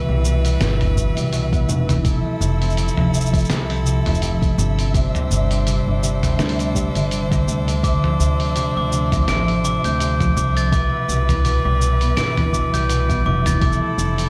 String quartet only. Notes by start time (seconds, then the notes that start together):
Already playing: E3 B4
2.05 F3 E4 A4
4.94 G3 D4 C5
7.83 F3
10.72 E3 B4
13.62 F3 E4 A4